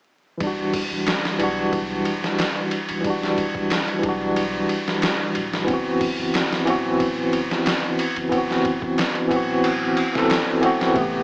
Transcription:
0.38 E1 E3 G3, kick, ride
0.44 D4 F#4
0.74 E1, kick, open hi-hat
0.91 E1
1.07 snare, ride
1.25 snare
1.39 B1 E3 G3 D4, ride
1.44 F#4
1.73 kick, ride
2.05 E1, ride
2.24 snare
2.39 snare, ride
2.71 ride
2.89 E1, ride
3.01 E3 G3, kick, ride
3.07 D4 F#4
3.23 snare
3.38 E1, kick, ride
3.55 E1, kick
3.70 snare, ride
3.88 ride
3.99 E3 G3
4.03 B1 D4, kick, ride
4.09 F#4
4.36 ride
4.69 ride
4.88 snare
5.02 snare, ride
5.35 D1, ride
5.53 snare
5.64 E3 B3
5.68 F#1 C4, kick, ride
5.73 F#4
6.01 F#1, kick, open hi-hat
6.19 F#1
6.34 snare, ride
6.53 snare
6.65 D1 E3 B3 C4, ride
6.70 F#4
7.00 kick, ride
7.33 F#1, ride
7.51 snare
7.66 snare, ride
7.99 ride
8.16 F#1, ride
8.29 E3 B3, kick, ride
8.35 C4 F#4
8.51 snare
8.65 F#1, kick, ride
8.82 F#1, kick
8.98 snare, ride
9.15 ride
9.27 D1 E3 B3, kick, ride
9.34 C4 F#4
9.64 ride
9.97 ride
10.13 E3 B3 C4, snare
10.18 A4
10.30 snare, ride
10.61 E1 E3 B3 C4, ride
10.66 F#4
10.81 snare
10.92 C3 A3, kick, ride
10.96 A1 B3
11.01 G4

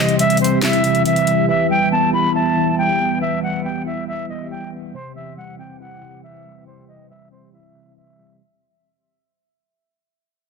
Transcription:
Already playing: C3 E3 G3 C4 E4 G4 D#5
0.09 closed hi-hat
0.19 G3 E5, closed hi-hat
0.30 closed hi-hat
0.37 C4 C5, closed hi-hat
0.44 closed hi-hat
0.62 E4 E5, snare, clap, closed hi-hat
0.73 closed hi-hat
0.84 C3, closed hi-hat
0.95 closed hi-hat
1.05 E3 E5, closed hi-hat
1.16 closed hi-hat
1.27 G3, closed hi-hat
1.48 E3 B3 E5
1.70 G3 G5
1.92 B3 A5
2.13 E4 B5
2.35 E5 A5
2.56 E3
2.78 G3 G5
3.00 B3
3.21 E3 E5
3.43 G3 F#5
3.65 B3 G5
3.86 E4 E5
4.08 E5
4.29 E3 D#5
4.51 G3 G5
4.73 B3
4.94 C3 E3 C4 G4 C5
5.16 E3 E5
5.37 G3 F#5
5.59 C4 G5
5.80 E4 F#5
6.02 C3
6.23 E3 E5
6.45 G3
6.67 C3 C5
6.88 E3 D#5
7.10 G3 E5
7.31 C4 C5
7.53 E4 E5
7.75 C3
7.96 E3 E5
8.18 G3

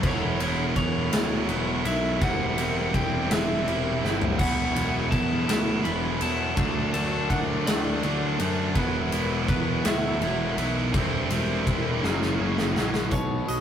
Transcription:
0.03 E1 E2 B2 E3 F#3 B3 E4 C#5, kick, ride
0.39 E1 F#3 B3 E4, ride
0.75 E2 E3 F#3 B3 E4 C#5, kick, ride
1.11 D2 E3 F#3 B3 E4, snare, ride
1.47 E1 E3 F#3 B3 E4, ride
1.83 B1 F#3 B3 E4 E5, ride
2.20 E1 C3 E3 G3 C4 E4 F#5, kick, ride
2.57 E1 G3 C4 E4, ride
2.93 E1 E3 G3 C4 E4 G5, kick, ride
3.30 E1 E3 G3 C4 E4 E5, snare, ride
3.67 E1 E3 G3 C4 E4, ride
4.02 G1 G3 C4 E4, snare
4.22 floor tom
4.38 E1 E2 B2 E3 F#3 B3 E4 F#5, kick, crash
4.75 E1 F#3 B3 E4, ride
5.10 E2 E3 F#3 B3 E4 A5, kick, ride
5.47 D2 F#3 B3 E4, snare, ride
5.51 E3
5.82 E1 E3 F#3 B3 E4 B5, ride
6.19 E2 F#3 B3 E4 A5, ride
6.55 D2 D3 F#3 A3 D4, kick, ride
6.92 D2 F#3 A3 D4 A5, ride
7.28 D2 D3 F#3 A3 D4 F#5, kick, ride
7.65 D2 D3 F#3 A3 D4 D5, snare, ride
8.01 D2 D3 F#3 A3 D4, ride
8.38 F#2 F#3 A3 D4, ride
8.74 E1 E2 B2 E3 F#3 B3 E4 B4, kick, ride
8.78 E3
9.11 E1 F#3 B3 E4, ride
9.48 E2 E3 F#3 B3 E4 B4, kick, ride
9.84 D2 E3 F#3 B3 E4 E5, snare, ride
10.21 E1 E3 F#3 B3 E4, ride
10.57 B1 F#3 B3 E4, ride
10.93 E1 C3 E3 G3 C4 E4, kick, ride
11.30 E1 G3 C4 E4, ride
11.66 E1 E3 G3 C4 E4, kick, ride
12.03 F#1 F#2 C#3 F#3 A#3 C#4, snare
12.22 snare
12.38 F#1 C#3 F#3 A#3 C#4
12.58 snare
12.75 A#1 F#3 A#3 C#4, snare
12.94 snare
13.11 B1 B2 D#3 F#3 B3 F#4 C#5, kick, closed hi-hat
13.46 B1 B2 D#3 F#3 B3 F#4 D#5, closed hi-hat

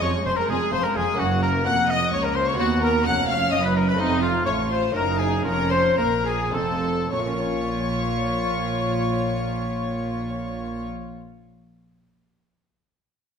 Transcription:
Already playing: G#3 C#4 G#4
0.01 F1 F2 F3 C#5 C#6
0.15 G#3
0.24 F1 F2 F3 C5 C6
0.37 G#3 A#4 A#5
0.48 F1 F2 F3 G#4 G#5
0.61 G#3
0.71 F1 F2 F3 C5 C6
0.84 G#3 A#4 A#5
0.94 F1 F2 F3 G#4 G#5
1.08 G#3
1.14 A#3 C#4 F#4
1.18 F#1 F#2 A#3 F#4 F#5
1.42 A#4 A#5
1.65 F1 F2 F#5 F#6
1.88 D#5 D#6
2.12 C#2 A#3 C#5 C#6
2.24 A#4 A#5
2.34 C5 C6
2.47 C#5 C#6
2.53 B3 F#4
2.58 D#2 B3 F#4 F#5
2.81 A#4 A#5
3.05 F1 F2 C#4 F#5 F#6
3.28 F5 F6
3.51 F#1 F#2 D#5 D#6
3.62 B4 B5
3.75 A#4 A#5
3.85 B4 B5
3.93 A3 C4 D#4 F4
3.98 F1 F2 C4 D#4 D#5
4.22 F4 F5
4.45 A1 A2 F4 C#5 C#6
4.70 C5 C6
4.90 F#1 A#3 C#4 A#4
4.94 F#2 D#4 A#4 A#5
5.19 G#4 G#5
5.41 F1 F2 A#3 C#4 F4 A#4
5.45 F2 C#4 A#5
5.71 C5 C6
5.97 A#1 A#2 A#3 A#4 A#5
6.26 G#4 G#5
6.50 F1 F2 C4 D#4 F4 A5
6.54 F2 A4
7.12 A#1 A#2 F4 C#5 C#6
7.19 A#3
7.26 C#4
7.33 F4
7.40 C#5

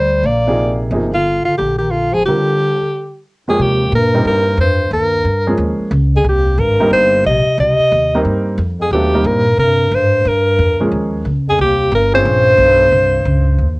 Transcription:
Already playing: D2 G3 C5
0.23 A#1 A#3 D5
0.47 C3 F3 A#3 D#4 G#4
0.91 G1 C3 F3 A#3 D#4 G#4
1.13 D3 F4
1.45 D3 F4, muted upright bass stroke
1.57 A#1 D3 G4
1.78 D#3 G4
1.91 D3 F4
2.11 G#1 F3 G#4
2.25 D3 G3 C4 F4 G4 A#4
3.48 F2 F3 G#3 A#3 G4 G#4 C#5
3.59 D#2 C3 G4
3.92 G2 A#2 A#4
4.14 G3 A#3 C4 D#4 A#4
4.25 G2 A#4
4.57 F2 G2 C5
4.91 D#2 G2 A#4
5.25 G2
5.47 F3 G#3 A#3 C#4 G#4
5.58 D#2
5.79 muted upright bass stroke
5.91 C#2
6.15 F2 G#4
6.24 C2 D#2
6.29 G4
6.58 G#1 G2 A#4
6.80 G3 A#3 C4 D#4 A#4
6.90 G1 G2 C5
7.24 A#1 C3 D#5
7.45 muted upright bass stroke
7.58 C2 C3 D#5
7.79 muted upright bass stroke
7.92 D#2
8.15 G3 A#3 C4 D#4 A#4
8.25 G2
8.58 F2
8.79 F2 G#4
8.91 D#2 F#3 A3 B3 D4 G4 A4
9.14 G3 A#3 C4 D#4 A#4
9.24 G2 A#2 A#4
9.58 G2 C3 A#4
9.92 G2 G#2 C5
10.25 G2 A#4
10.59 F2
10.80 F3 G#3 A#3 C#4 G#4, muted upright bass stroke
10.92 D#2
11.25 C#2
11.48 F2 G#4
11.59 C2 D#2 G4
11.92 G1 G2 A#4
12.14 G2 C4 C#4 F4 G#4 C5
12.25 A#1
12.58 B1
12.92 C2
13.25 C#2
13.58 D#2

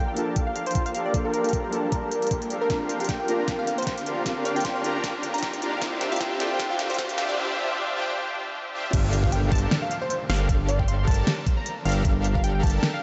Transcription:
Already playing: F3 A#3 D4 F4 G4 A4 A#4 F5 A5, riser
0.08 G5
0.15 A#3 D4 F4 G4 A4 A#4 A5, closed hi-hat
0.19 A#4
0.36 kick, closed hi-hat
0.47 F5
0.56 F5, closed hi-hat
0.66 C5, closed hi-hat
0.71 closed hi-hat
0.75 C5, kick, closed hi-hat
0.86 F5, closed hi-hat
0.95 D4 G4 A4 A#4 F5, closed hi-hat
1.06 D5
1.13 A#3 D4 F4 G4 A4 A#4 F5, kick, closed hi-hat
1.25 A#4
1.34 A#4, closed hi-hat
1.43 A#3 D4 F4 A4, closed hi-hat
1.49 closed hi-hat
1.53 A#4, kick, closed hi-hat
1.64 A#4
1.70 A#3 D4 F4 G4 A4 A#4 A5, closed hi-hat
1.74 A#4
1.92 A#4, kick, closed hi-hat
2.12 closed hi-hat
2.22 closed hi-hat
2.27 closed hi-hat
2.31 kick, closed hi-hat
2.42 closed hi-hat
2.50 D4 G4 A4 A#4 F5, closed hi-hat
2.61 A#4
2.69 D3 C4 D4 F4 G4 A#4 F5, kick, snare, closed hi-hat
2.89 closed hi-hat
2.99 C4 D4 F4 G4 F5, closed hi-hat
3.05 closed hi-hat
3.09 G5, kick, snare, closed hi-hat
3.20 G5
3.26 C4 D4 F4 G4 A#4 A#5, closed hi-hat
3.30 A#4
3.48 kick, snare, closed hi-hat
3.59 F5
3.67 F5, closed hi-hat
3.78 C5, closed hi-hat
3.82 closed hi-hat
3.87 C5, kick, snare, closed hi-hat
3.98 closed hi-hat
4.06 D4 F4 G4 A#4 F5, closed hi-hat
4.25 C4 D4 F4 G4 A#4 F5, kick, snare, closed hi-hat
4.45 D5, closed hi-hat
4.55 C4 D4 F4 G4 G5, closed hi-hat
4.60 closed hi-hat
4.65 C6, kick, snare, closed hi-hat
4.75 C6
4.82 C4 D4 F4 G4 A#4 A#5, closed hi-hat
5.04 kick, snare, closed hi-hat
5.23 closed hi-hat
5.34 A#5, closed hi-hat
5.38 closed hi-hat
5.43 A#5, kick, snare, closed hi-hat
5.53 closed hi-hat
5.62 D4 F4 G4 A#4 F5, closed hi-hat
5.80 F3 C4 D4 E4 F4 G4 C5 E5, kick, snare, closed hi-hat
6.01 snare, closed hi-hat
6.11 C4 E4 F4 G4 F5, closed hi-hat
6.16 closed hi-hat
6.20 G5, kick, snare, closed hi-hat
6.31 G5
6.38 C4 D4 E4 F4 G4 C5 G5, snare, closed hi-hat
6.42 A4
6.60 kick, snare, closed hi-hat
6.70 F5
6.79 F5, snare, closed hi-hat
6.90 C5, closed hi-hat
6.94 closed hi-hat
6.98 C5, kick, snare, closed hi-hat
7.09 F5, closed hi-hat
7.18 D4 F4 G4 C5 E5 F5, snare, closed hi-hat
7.29 D5
7.37 D4 F4 G4 C5 E5
7.96 D4 F4 G4 C5 G5
8.74 D4 F4 G4 C5 E5
8.93 G1 D4 G4 A4 A#4 F5, kick, closed hi-hat, crash, downlifter
9.13 closed hi-hat
9.24 F5, kick
9.32 G5, closed hi-hat
9.43 G5
9.52 G1 D4 G4 A4 A#4 A5, kick, closed hi-hat
9.55 closed hi-hat
9.58 closed hi-hat
9.71 snare, closed hi-hat
9.82 F5
9.91 F5, closed hi-hat
10.02 C5
10.10 C5, closed hi-hat
10.30 G1 D4 G4 A4 A#4 F5, snare, closed hi-hat
10.33 closed hi-hat
10.36 closed hi-hat
10.49 G1 D4 G4 A4 A#4 F5, kick, closed hi-hat
10.69 D5, closed hi-hat
10.79 G5, kick
10.88 C6, closed hi-hat
10.99 C6
11.07 G1 D4 G4 A4 A#4 A5, kick, closed hi-hat
11.11 closed hi-hat
11.14 closed hi-hat
11.27 snare, closed hi-hat
11.47 kick, closed hi-hat
11.57 A#5
11.66 A#5, closed hi-hat
11.85 G1 D4 G4 A4 A#4 F5, closed hi-hat
11.89 closed hi-hat
11.92 closed hi-hat
12.05 G1 D4 G4 A4 A#4 F5, kick, closed hi-hat
12.24 closed hi-hat
12.35 F5, kick
12.44 G5, closed hi-hat
12.55 G5
12.63 G1 D4 G4 A4 A#4 A5, kick, closed hi-hat
12.67 closed hi-hat
12.70 closed hi-hat
12.83 snare, closed hi-hat
12.94 F5

